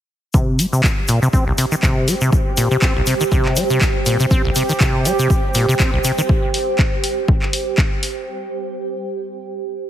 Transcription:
0.34 C3 G4, kick, shaker
0.59 G3, open hi-hat, shaker
0.73 C3, shaker
0.80 C5, kick, clap
0.85 shaker
0.93 G5
1.08 A#2, open hi-hat, shaker
1.22 C3, shaker
1.33 C4, kick, shaker
1.47 C2
1.58 C3, open hi-hat, shaker
1.72 D#3, shaker
1.83 C3, kick, clap, shaker
2.08 G3, open hi-hat, shaker
2.21 C3, shaker
2.32 kick, shaker
2.57 A#2, open hi-hat, shaker
2.71 C3, shaker
2.82 C4, kick, clap, shaker
2.96 C2
3.07 C3, open hi-hat, shaker
3.20 D#3, shaker
3.31 C3, kick, shaker
3.46 clap
3.56 G3, open hi-hat, shaker
3.70 C3, shaker
3.81 kick, clap, shaker
4.06 A#2, open hi-hat, shaker
4.20 C3, shaker
4.31 C4 G4, kick, shaker
4.45 C2
4.55 C3, open hi-hat, shaker
4.69 D#3, shaker
4.80 C3, kick, clap, shaker
5.05 G3, open hi-hat, shaker
5.19 C3, shaker
5.30 kick, shaker
5.54 A#2, open hi-hat, shaker
5.69 C3, shaker
5.79 C4, kick, clap, shaker
5.93 C2
6.04 C3, open hi-hat, shaker
6.18 D#3, shaker
6.29 kick
6.54 open hi-hat
6.79 kick, clap
7.04 open hi-hat
7.28 kick
7.42 clap
7.53 open hi-hat
7.78 kick, clap
8.03 open hi-hat

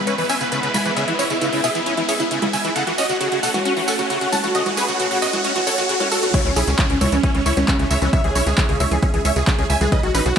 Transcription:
Already playing: G#3 B3 E4 B4 E5, riser
0.07 C#4 B4, closed hi-hat, tambourine
0.18 E3 B4, open hi-hat
0.29 C#4 E5 G#5, open hi-hat, tambourine
0.41 C#3 B4, closed hi-hat, tambourine
0.52 C#3 B4, closed hi-hat, tambourine
0.63 C#3 B4, closed hi-hat
0.74 C#3 G#5 B5, open hi-hat, tambourine, high conga
0.85 E3 B4, closed hi-hat, tambourine
0.97 C#3 G#4 E5, closed hi-hat, tambourine
1.08 E3 E4, closed hi-hat
1.19 C#4 E4 C#5, open hi-hat, tambourine
1.30 C#3 E4, closed hi-hat, tambourine
1.41 C#3 E4, closed hi-hat, tambourine
1.53 C#3 E4, open hi-hat
1.64 B2 G#4 E5, open hi-hat, tambourine
1.75 E3 E4, closed hi-hat, tambourine
1.86 C#4 E4, closed hi-hat, tambourine
1.97 E3 E4, closed hi-hat
2.08 C#4 G#4 E5, open hi-hat, tambourine
2.20 C#3 E4, closed hi-hat, tambourine
2.31 C#3 E4, closed hi-hat, tambourine
2.42 C#3 E4, closed hi-hat, high conga
2.53 C#3 E5 G#5, open hi-hat, tambourine
2.65 E3 E4, closed hi-hat, tambourine
2.76 C#3 A3 C#4 F#4 A4 C#5 F#5, closed hi-hat, tambourine
2.87 E3 F#4, closed hi-hat
2.98 C#4 F#4 D#5, open hi-hat, tambourine
3.09 C#3 F#4, closed hi-hat, tambourine
3.21 C#3 F#4, closed hi-hat, tambourine
3.32 C#3 F#4, closed hi-hat
3.43 B2 A4 F#5, open hi-hat, tambourine
3.54 E3 F#4, closed hi-hat, tambourine, high conga
3.65 C#4 F#4, closed hi-hat, tambourine
3.76 E3 F#4, open hi-hat
3.88 C#4 A4 F#5, open hi-hat, tambourine
3.99 C#3 F#4, closed hi-hat, tambourine
4.10 C#3 F#4, closed hi-hat, tambourine
4.21 C#3 F#4, closed hi-hat
4.32 C#3 F#5 A5, open hi-hat, tambourine, high conga
4.44 E3 F#4, closed hi-hat, tambourine
4.55 C#3 F#4 D#5, closed hi-hat, tambourine
4.66 E3 F#4, closed hi-hat, high conga
4.77 C#4 G#4 B4, open hi-hat, tambourine
4.88 C#3 F#4, closed hi-hat, tambourine
5.00 C#3 F#4, closed hi-hat, tambourine
5.11 C#3 F#4, open hi-hat
5.22 B2 F#4 D#5, open hi-hat, tambourine
5.33 E3 F#4, closed hi-hat, tambourine, high conga
5.44 C#4 F#4, closed hi-hat, tambourine
5.56 E3 F#4, closed hi-hat
5.67 C#3 A4 C#5, open hi-hat, tambourine
5.78 D#3 F#4, closed hi-hat, tambourine
5.89 C#3 F#4, closed hi-hat, tambourine
6.00 C#4 F#4, closed hi-hat, high conga
6.12 C#2 F#4 A4, open hi-hat, tambourine
6.23 B2 F#4, closed hi-hat, tambourine
6.34 C#3 G#3 C#4 E4 C#5 E5, kick, closed hi-hat, crash, tambourine, downlifter
6.45 C#2 E3 C#4, closed hi-hat
6.56 B1 C#4 E4 G#4, open hi-hat, tambourine
6.67 C#2 C#3 C#4, closed hi-hat, tambourine
6.79 C#3 C#4, kick, clap, closed hi-hat, tambourine
6.90 C#2 C#3 C#4, closed hi-hat
7.01 C#2 B2 E4 C#5, open hi-hat, tambourine, high conga
7.12 C#2 E3 C#4, closed hi-hat, tambourine
7.23 C#4, kick, closed hi-hat, tambourine
7.35 C#2 E3 C#4, closed hi-hat
7.46 C#2 C#4 E4 C#5, open hi-hat, tambourine
7.57 C#2 C#3 C#4, closed hi-hat, tambourine, high conga
7.68 C#3 C#4, kick, clap, closed hi-hat, tambourine
7.79 C#2 C#3 C#4, closed hi-hat
7.91 C#2 C#3 C#5 E5, open hi-hat, tambourine
8.02 C#2 E3 C#4, closed hi-hat, tambourine
8.13 C#3 C#5 E5, kick, closed hi-hat, tambourine
8.24 C#2 E3 G#4, closed hi-hat
8.35 B1 C#4 E4 C#5, open hi-hat, tambourine
8.47 C#2 C#3 G#4, closed hi-hat, tambourine
8.58 C#3 G#4, kick, clap, closed hi-hat, tambourine
8.69 C#2 C#3 G#4, closed hi-hat
8.80 C#2 B2 C#5 E5, open hi-hat, tambourine
8.91 C#2 E3 G#4, closed hi-hat, tambourine
9.02 C#4 G#4, kick, closed hi-hat, tambourine
9.14 C#2 E3 G#4, closed hi-hat
9.25 C#2 C#4 C#5 E5, open hi-hat, tambourine
9.36 C#2 C#3 G#4, closed hi-hat, tambourine
9.47 C#3 G#4, kick, clap, closed hi-hat, tambourine
9.59 C#2 C#3 G#4, closed hi-hat
9.70 C#2 C#3 E5 G#5, open hi-hat, tambourine
9.81 C#2 E3 G#4, closed hi-hat, tambourine, high conga
9.92 C#3 F#3 B3 D#4 B4 D#5, kick, closed hi-hat, tambourine
10.03 B1 D#3 F#4, closed hi-hat
10.14 A1 C#4 D#4 B4, open hi-hat, tambourine
10.26 B1 C#3 F#4, closed hi-hat, tambourine

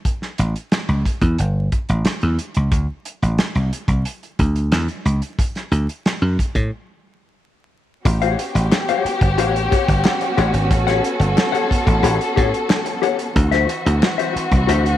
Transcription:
0.05 kick, closed hi-hat
0.22 snare
0.38 A1, closed hi-hat
0.56 closed hi-hat
0.72 snare, closed hi-hat
0.88 C#2, closed hi-hat
1.05 kick, closed hi-hat
1.21 E2, kick, closed hi-hat
1.38 G1, closed hi-hat
1.72 kick, closed hi-hat
1.89 A1, closed hi-hat
2.05 muted slap bass stroke, snare, closed hi-hat
2.21 E2, closed hi-hat
2.39 closed hi-hat
2.55 C#2, closed hi-hat
2.72 D2, kick, closed hi-hat
3.05 closed hi-hat
3.22 A1, closed hi-hat
3.38 snare, closed hi-hat
3.55 C2, closed hi-hat
3.73 closed hi-hat
3.88 C2, kick, closed hi-hat
4.05 closed hi-hat
4.23 closed hi-hat
4.39 D2, kick, closed hi-hat
4.56 closed hi-hat
4.72 E2, snare, closed hi-hat
4.88 closed hi-hat
5.05 C#2, closed hi-hat
5.22 closed hi-hat
5.39 kick, closed hi-hat
5.55 snare, closed hi-hat
5.72 D2, closed hi-hat
5.89 closed hi-hat
6.06 snare, closed hi-hat
6.22 F#2
6.39 kick, closed hi-hat
6.55 A2, kick, closed hi-hat
8.05 A1 B3 C#4 F#4 G4, muted clean electric guitar stroke, kick, closed hi-hat
8.22 G4 C#5 F#5, closed hi-hat
8.39 muted clean electric guitar stroke, closed hi-hat
8.55 A1, muted clean electric guitar stroke, closed hi-hat
8.72 muted clean electric guitar stroke, snare, clap
8.89 G4 C#5 F#5, closed hi-hat
9.05 muted slap bass stroke, muted clean electric guitar stroke, closed hi-hat
9.21 G1, muted clean electric guitar stroke, kick, closed hi-hat
9.38 A1 G4 C#5 F#5, closed hi-hat
9.55 muted clean electric guitar stroke, closed hi-hat
9.71 G4 C#5 F#5, kick, closed hi-hat
9.88 G1, muted clean electric guitar stroke, kick, closed hi-hat
10.04 muted clean electric guitar stroke, snare, clap
10.21 muted clean electric guitar stroke, closed hi-hat
10.37 A1 G4 C#5 F#5, closed hi-hat
10.53 G#1, muted clean electric guitar stroke, closed hi-hat
10.71 A1 A4, muted clean electric guitar stroke, kick, closed hi-hat
10.87 G4 C#5 F#5, snare, closed hi-hat
11.03 muted clean electric guitar stroke, closed hi-hat
11.20 G1, muted clean electric guitar stroke, closed hi-hat
11.36 muted clean electric guitar stroke, snare, clap
11.52 G4 C#5 F#5, closed hi-hat
11.70 muted clean electric guitar stroke, muted slap bass stroke, kick, closed hi-hat
11.86 A1, muted clean electric guitar stroke, kick, closed hi-hat
12.03 A1 G4 C#5 F#5, closed hi-hat
12.19 muted clean electric guitar stroke, closed hi-hat
12.36 A2 G4 C#5 F#5, kick, closed hi-hat
12.54 muted clean electric guitar stroke, closed hi-hat
12.69 muted clean electric guitar stroke, snare, clap
12.86 muted clean electric guitar stroke, closed hi-hat
13.02 G4 C#5 F#5, closed hi-hat
13.19 muted clean electric guitar stroke, closed hi-hat
13.35 D2 E3 C4 F#4, muted clean electric guitar stroke, kick, closed hi-hat
13.51 F#4 C5 E5, snare, closed hi-hat
13.68 muted clean electric guitar stroke, closed hi-hat
13.86 D2, muted clean electric guitar stroke, closed hi-hat
14.02 muted clean electric guitar stroke, snare, clap
14.18 F#4 C5 E5, closed hi-hat
14.35 muted clean electric guitar stroke, muted slap bass stroke, closed hi-hat
14.51 C2, muted clean electric guitar stroke, kick, closed hi-hat
14.67 D2 F#4 C5 E5, closed hi-hat
14.85 muted clean electric guitar stroke, closed hi-hat

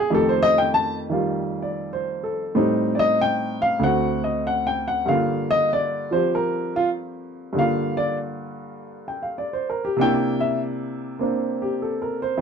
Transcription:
Already playing: G#3 C4 D4
0.10 F2 D#3 A3 G4
0.15 A4
0.29 C5
0.43 D#5
0.58 G5
0.74 A5
1.09 D#3 G3 F4
1.62 D5
1.93 C5
2.24 A4
2.55 A2 G3 C4 D#4
2.95 D5
2.99 D#5
3.21 G5
3.62 F5
3.79 D2 D3 C4
3.83 F#4 F#5
4.24 D#5
4.47 F#5
4.67 G5
4.88 F#5
5.06 G2 D3 A#3 F5
5.11 F4
5.51 D#5
5.73 D5
6.11 F3 C4 G4 C5
6.35 A#4
6.76 F4
7.53 G2 D3 A#3
7.58 F4 F5
7.97 D5
9.08 G5
9.22 F5
9.38 D5
9.53 C5
9.70 A#4
9.85 G4
9.96 C3 A#3 D4
10.01 E4 G5
10.40 E5
11.19 A#3 C4 D4
11.62 G4
11.82 A4
12.02 A#4
12.22 C5
12.37 F2

